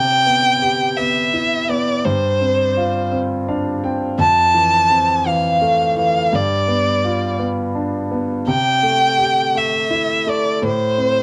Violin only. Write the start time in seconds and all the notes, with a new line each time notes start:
Already playing: G5
0.97 E5
1.70 D5
2.04 C5
4.20 A5
5.27 F5
5.99 F5
6.35 D5
8.49 G5
9.57 E5
10.30 D5
10.67 C5